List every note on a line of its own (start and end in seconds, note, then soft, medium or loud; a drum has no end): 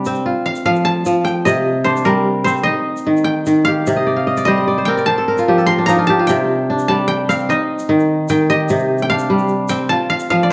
0.00 0.30 C3 medium
0.00 0.30 G3 medium
0.00 1.13 D4 medium
0.00 0.25 G4 medium
0.05 1.86 C4 medium
0.05 shaker medium
0.15 shaker soft
0.26 1.77 F4 medium
0.46 0.65 F5 medium
0.55 shaker medium
0.65 1.05 F3 medium
0.65 0.72 F5 medium
0.75 shaker soft
0.85 2.11 A5 medium
1.05 1.51 F3 medium
1.05 shaker medium
1.25 2.59 G5 medium
1.25 shaker soft
1.45 2.71 C3 medium
1.45 2.63 D#5 medium
1.45 shaker medium
1.84 2.73 D4 medium
1.84 2.44 C5 medium
1.96 shaker soft
2.05 2.71 G3 medium
2.05 3.89 A#4 medium
2.44 4.26 C4 medium
2.44 2.50 C5 medium
2.44 shaker medium
2.57 shaker soft
2.63 4.13 D#4 medium
2.63 4.18 D#5 medium
2.97 shaker medium
3.07 3.45 D#3 medium
3.17 shaker soft
3.24 4.59 G5 medium
3.46 3.92 D#3 medium
3.46 shaker medium
3.65 5.09 G4 medium
3.65 5.09 F5 medium
3.87 5.13 C3 medium
3.87 shaker medium
3.96 4.26 D#5 medium
4.07 4.33 D5 medium
4.16 5.16 F5 medium
4.27 4.57 D#5 medium
4.37 4.63 D5 medium
4.37 shaker soft
4.45 5.13 G3 medium
4.45 4.77 C5 medium
4.45 6.00 D#5 medium
4.57 5.03 D#5 medium
4.68 4.97 D5 medium
4.78 5.07 C5 medium
4.85 6.68 C4 medium
4.85 5.24 A#4 medium
4.85 6.20 G5 medium
4.97 5.95 D5 medium
4.97 shaker soft
5.06 6.26 C5 medium
5.06 5.92 A5 loud
5.18 5.58 A4 medium
5.28 5.64 A#4 medium
5.38 5.98 F4 medium
5.38 shaker soft
5.48 5.87 F3 medium
5.48 6.09 G4 medium
5.58 6.90 A4 medium
5.58 shaker soft
5.66 6.96 A#4 medium
5.66 6.80 C6 loud
5.78 6.69 D4 medium
5.86 6.33 F3 medium
5.86 6.76 D#4 medium
5.86 6.13 A#5 medium
5.86 shaker medium
5.98 6.19 F4 medium
6.07 7.51 G4 medium
6.07 6.88 A5 medium
6.19 7.71 F4 medium
6.27 7.54 C3 medium
6.27 7.07 G5 loud
6.27 shaker medium
6.70 7.55 D4 medium
6.79 shaker soft
6.88 7.54 G3 medium
6.88 8.14 A5 medium
7.08 8.29 G5 loud
7.29 9.09 C4 medium
7.29 8.73 F5 medium
7.29 shaker medium
7.39 shaker soft
7.49 9.17 D#4 medium
7.49 8.49 D#5 medium
7.79 shaker soft
7.89 8.29 D#3 medium
7.99 shaker soft
8.29 8.74 D#3 medium
8.29 9.02 G5 medium
8.29 shaker medium
8.50 9.91 G4 medium
8.50 10.04 D#5 medium
8.69 9.95 C3 medium
8.69 shaker medium
8.79 shaker soft
8.98 shaker soft
9.02 9.69 G5 medium
9.10 10.53 D4 medium
9.10 10.09 F5 medium
9.19 shaker soft
9.30 9.95 G3 medium
9.39 shaker soft
9.48 shaker soft
9.69 10.53 C4 medium
9.69 10.53 G5 medium
9.69 shaker medium
9.89 10.53 F4 medium
9.89 10.53 A5 loud
10.10 10.30 F5 medium
10.20 shaker soft
10.30 10.53 F3 medium
10.30 10.53 F5 medium
10.43 10.53 D5 medium